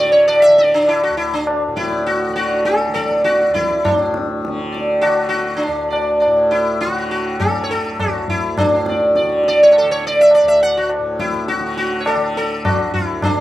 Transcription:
0.00 1.09 D2 medium
0.00 1.67 A2 medium
0.00 0.48 D3 medium
0.00 0.12 D5 medium
0.12 0.27 C#5 medium
0.28 0.43 D5 medium
0.28 tabla na medium
0.42 0.58 E5 loud
0.48 2.28 D3 medium
0.58 0.74 D5 medium
0.58 tabla te medium
0.74 0.89 D4 medium
0.88 1.03 E4 medium
0.88 tabla na medium
1.03 1.17 F#4 medium
1.10 3.49 D2 medium
1.17 1.33 E4 medium
1.17 tabla na medium
1.34 1.47 D4 medium
1.47 tabla na medium
1.68 3.85 A2 medium
1.76 2.06 E4 medium
1.76 2.04 D5 soft
1.76 tabla ke medium
1.93 tabla te medium
2.06 2.35 F#4 medium
2.06 tabla te medium
2.28 2.88 D3 medium
2.35 2.65 F#4 medium
2.35 2.64 D5 soft
2.35 tabla te soft
2.65 2.93 A4 medium
2.65 tabla te medium
2.81 tabla te soft
2.88 4.46 D3 soft
2.94 3.24 A4 medium
2.94 3.23 D5 soft
2.94 tabla ke soft
3.11 tabla te medium
3.24 3.54 F#4 medium
3.24 3.52 D5 soft
3.24 tabla te medium
3.41 tabla te medium
3.49 5.67 D2 soft
3.54 3.86 E4 medium
3.54 3.82 D5 soft
3.54 tabla ke medium
3.71 tabla te soft
3.85 6.26 A2 medium
3.85 4.70 D4 medium
3.85 tabla na loud
3.85 tabla ge medium
4.14 tabla te medium
4.45 5.06 D3 medium
4.45 tabla te medium
4.72 5.01 D5 soft
4.72 tabla te medium
5.01 5.28 F#4 medium
5.01 tabla na medium
5.06 6.87 D3 medium
5.29 5.62 F#4 medium
5.33 tabla te soft
5.57 6.15 D4 medium
5.64 8.05 D2 medium
5.64 tabla na medium
5.90 6.19 D5 soft
5.90 tabla na medium
6.20 6.48 D5 soft
6.20 tabla na medium
6.27 8.62 A2 medium
6.51 6.80 E4 medium
6.51 tabla te medium
6.81 7.10 F#4 medium
6.81 tabla te medium
6.87 7.45 D3 medium
7.11 7.39 F#4 medium
7.11 tabla te medium
7.40 7.63 A4 medium
7.40 tabla na medium
7.40 tabla ge medium
7.45 9.22 D3 medium
7.64 7.70 C#5 medium
7.70 8.00 A4 medium
7.70 tabla te medium
8.00 8.29 F#4 medium
8.00 tabla na medium
8.00 tabla ge medium
8.05 10.42 D2 medium
8.28 8.59 E4 medium
8.28 tabla ge soft
8.58 9.48 D4 medium
8.58 tabla na medium
8.58 tabla ge medium
8.63 10.98 A2 medium
8.86 9.15 D5 soft
8.86 tabla te medium
9.16 9.43 D5 soft
9.16 tabla te medium
9.22 9.82 D3 medium
9.44 tabla te medium
9.48 9.61 D5 medium
9.63 9.70 C#5 medium
9.71 9.75 C#5 medium
9.71 tabla na medium
9.78 9.91 A4 medium
9.82 11.59 D3 medium
9.91 10.05 C#5 loud
10.02 tabla te medium
10.07 10.20 D5 medium
10.21 10.34 E5 medium
10.31 10.48 D5 medium
10.31 tabla na medium
10.42 12.76 D2 medium
10.48 10.62 E5 medium
10.61 10.77 F#5 medium
10.61 tabla na medium
10.77 10.90 F#4 medium
10.89 tabla na medium
10.98 13.34 A2 medium
11.19 11.48 E4 medium
11.19 tabla ke medium
11.34 tabla te medium
11.48 11.76 F#4 medium
11.48 tabla te medium
11.59 12.15 D3 medium
11.77 12.01 F#4 medium
11.77 tabla te medium
12.00 12.07 C#5 medium
12.06 12.36 A4 medium
12.06 tabla na medium
12.15 13.40 D3 medium
12.36 12.64 A4 medium
12.36 tabla te medium
12.65 12.93 F#4 medium
12.65 tabla na medium
12.65 tabla ge medium
12.77 13.40 D2 medium
12.94 13.24 E4 medium
12.94 tabla ge soft
13.22 13.40 D4 medium
13.22 tabla na loud
13.22 tabla ge medium
13.35 13.40 A2 medium

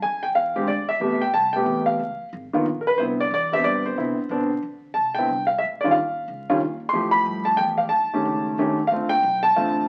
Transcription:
0.02 0.34 F2 medium
0.02 0.24 G#5 loud
0.23 0.28 G5 medium
0.35 0.66 E2 medium
0.35 0.66 F5 medium
0.56 0.66 D3 medium
0.56 0.67 G#3 medium
0.56 0.67 C4 medium
0.56 0.67 G4 medium
0.67 0.87 D2 medium
0.67 0.90 D5 medium
0.88 1.23 E5 medium
0.88 muted upright bass stroke soft
1.00 1.20 A1 medium
1.00 1.20 C3 medium
1.00 1.20 A3 medium
1.00 1.20 B3 medium
1.00 1.20 G4 medium
1.21 1.33 G5 medium
1.21 muted upright bass stroke soft
1.34 1.65 C2 medium
1.34 1.53 A5 medium
1.53 1.97 C3 medium
1.53 1.98 A3 medium
1.53 1.98 B3 medium
1.53 1.98 G4 medium
1.53 1.88 G5 medium
1.66 1.98 E2 medium
1.86 2.28 F5 medium
1.99 2.19 C#2 medium
2.21 muted upright bass stroke soft
2.33 2.52 G#1 medium
2.53 2.64 D#3 medium
2.53 2.64 A#3 medium
2.53 2.64 B3 medium
2.53 2.65 F4 medium
2.53 muted upright bass stroke soft
2.66 2.97 A#1 medium
2.81 2.86 A#4 medium
2.87 2.99 B4 medium
2.98 3.30 C2 medium
2.98 3.18 D3 medium
2.98 3.18 B3 medium
2.98 3.18 C4 soft
2.98 3.18 E4 medium
2.98 3.03 C5 medium
3.20 3.32 D5 medium
3.31 3.62 E2 medium
3.31 3.54 D5 loud
3.52 3.94 D3 medium
3.52 3.95 B3 medium
3.52 3.95 C4 medium
3.52 3.95 G4 medium
3.52 3.65 E5 loud
3.63 3.95 G2 medium
3.63 3.86 D5 loud
3.86 4.59 C5 medium
3.96 4.16 C3 medium
3.96 4.16 D3 medium
3.96 4.16 B3 soft
3.96 4.16 C4 medium
3.96 4.16 E4 medium
4.17 muted upright bass stroke soft
4.29 4.61 B2 medium
4.29 4.49 D3 medium
4.29 4.49 B3 medium
4.29 4.50 C4 medium
4.29 4.49 D4 medium
4.62 4.95 D3 medium
4.94 5.27 C3 medium
4.94 5.17 A5 medium
5.14 5.28 D3 medium
5.14 5.28 B3 soft
5.14 5.28 E4 medium
5.14 5.46 G5 medium
5.19 5.28 C4 medium
5.28 5.60 C2 medium
5.47 5.60 F5 medium
5.58 5.94 D2 medium
5.58 5.64 E5 medium
5.81 5.94 D#3 medium
5.81 5.94 G3 medium
5.81 5.94 F4 medium
5.81 5.94 D5 medium
5.85 5.94 C#4 medium
5.91 6.76 F5 medium
5.96 6.27 D#2 medium
6.28 6.60 C#2 medium
6.49 6.60 D#3 medium
6.49 6.60 G3 medium
6.49 6.60 C#4 medium
6.49 6.60 F4 medium
6.61 6.92 D#2 medium
6.89 7.25 F2 medium
6.89 7.13 C6 loud
6.93 7.85 F3 medium
6.93 7.85 A3 medium
6.93 7.85 E4 medium
6.93 7.85 G4 medium
7.11 7.43 B5 loud
7.26 7.58 G2 medium
7.45 7.57 A5 medium
7.57 7.91 E2 medium
7.57 7.62 G5 loud
7.78 7.83 F5 medium
7.89 8.24 D#2 medium
7.89 8.73 A5 medium
8.14 8.56 D#3 medium
8.14 8.56 A3 medium
8.14 8.56 C#4 medium
8.14 8.56 G4 medium
8.25 8.57 C#2 medium
8.58 8.90 A1 medium
8.58 8.77 D#3 medium
8.58 8.77 A3 medium
8.58 8.77 C#4 medium
8.58 8.78 G4 medium
8.87 9.22 D2 medium
8.87 9.11 F5 medium
8.92 9.10 D3 medium
8.92 9.10 A3 medium
8.92 9.11 C4 medium
8.92 9.10 F4 medium
9.09 9.45 G5 loud
9.23 9.55 B1 medium
9.43 9.88 A5 loud
9.56 9.88 A1 medium
9.56 9.88 D3 medium
9.56 9.88 A3 medium
9.56 9.88 C4 medium
9.56 9.88 F4 medium

